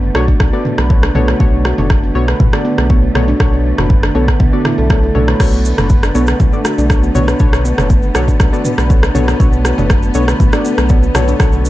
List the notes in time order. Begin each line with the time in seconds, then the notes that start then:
Already playing: F#1 D3 A3
0.15 B1 B3 D4 F#4 A4 C#5, cross-stick
0.28 D4, kick
0.40 B1, kick, cross-stick
0.53 B3 D4 F#4 A4 D5
0.65 mid tom
0.78 B1 B4, cross-stick
0.90 B3 D4 F#4 A4 C#5, kick
1.03 D4, cross-stick
1.15 B1 B3 D4 F#4 A4 C#5, mid tom
1.28 cross-stick
1.40 B1 B3 D4 F#4 A4 C#5, kick
1.65 F#4, cross-stick
1.78 F#1 B3 D4 F#4 A4 C#5, mid tom
1.90 kick, cross-stick
2.03 B3
2.15 B1 B3 D4 F#4 A4 C#5
2.28 B4, cross-stick
2.40 B1, kick, mid tom
2.53 B3 D4 F#4 A4 D5, cross-stick
2.65 B3
2.78 B1, cross-stick
2.90 B3 D4 F#4 A4 C#5, kick
3.15 B1 B3 D4 F#4 A4 C#5, cross-stick, mid tom
3.28 D4
3.40 B1 B3 D4 F#4 A4 C#5, kick, cross-stick
3.53 B3
3.78 F#1 B3 D4 F#4 A4 B4 C#5, cross-stick, mid tom
3.90 kick
4.03 D4, cross-stick
4.15 B1 B3 D4 F#4 A4 C#5
4.28 kick, cross-stick
4.40 B1 B3, kick
4.53 B3 D4 F#4 A4 D5
4.65 E4, cross-stick, mid tom
4.78 B1 A4
4.90 B3 D4 F#4 A4 C#5, kick, cross-stick
5.03 A4
5.15 B1 B3 D4 F#4 A4 C#5, mid tom
5.28 B4, cross-stick
5.40 B1 B3 D4 F#4 A4 C#5, kick, cross-stick, crash, cabasa
5.53 B3, cabasa
5.65 cabasa
5.78 F#1 B3 D4 F#4 A4 B4 C#5, cross-stick, mid tom, cabasa
5.90 kick, cabasa
6.03 D4, cross-stick, cabasa
6.15 B1 B3 D4 F#4 A4 C#5, cabasa
6.27 cross-stick, cabasa
6.40 B1 B3, kick, mid tom, cabasa
6.53 B3 D4 F#4 A4 D5, cabasa
6.65 F#4, cross-stick, cabasa
6.78 B1 D4, cabasa
6.90 B3 D4 F#4 A4 C#5, kick, cross-stick, cabasa
7.03 B3, cabasa
7.15 B1 B3 D4 F#4 A4 C#5, mid tom, cabasa
7.28 B4, cross-stick, cabasa
7.39 B1 B3 D4 F#4 A4 C#5, kick, cabasa
7.53 D4, cross-stick, cabasa
7.65 B3, cabasa
7.78 F#1 B3 D4 F#4 A4 C#5, cross-stick, mid tom, cabasa
7.90 B3, kick, cabasa
8.03 cabasa
8.15 B1 B3 D4 F#4 A4 C#5, cross-stick, cabasa
8.28 D4, kick, cabasa
8.40 B1, kick, cross-stick, cabasa
8.53 B3 D4 F#4 A4 D5, cabasa
8.65 mid tom, cabasa
8.78 B1 B4, cross-stick, cabasa
8.90 B3 D4 F#4 A4 C#5, kick, cabasa
9.03 D4, cross-stick, cabasa
9.15 B1 B3 D4 F#4 A4 C#5, mid tom, cabasa
9.28 cross-stick, cabasa
9.40 B1 B3 D4 F#4 A4 C#5, kick, cabasa
9.53 cabasa
9.65 F#4, cross-stick, cabasa
9.78 F#1 B3 D4 F#4 A4 C#5, mid tom, cabasa
9.90 kick, cross-stick, cabasa
10.03 B3, cabasa
10.14 B1 B3 D4 F#4 A4 C#5, cabasa
10.28 B4, cross-stick, cabasa
10.40 B1, kick, mid tom, cabasa
10.53 B3 D4 F#4 A4 D5, cross-stick, cabasa
10.65 B3, cabasa
10.78 B1, cross-stick, cabasa
10.89 B3 D4 F#4 A4 C#5, kick, cabasa
11.03 cabasa
11.15 B1 B3 D4 F#4 A4 C#5, cross-stick, mid tom, cabasa
11.28 D4, cabasa
11.40 B1 B3 D4 F#4 A4 C#5, kick, cross-stick, cabasa
11.52 B3, cabasa
11.65 cabasa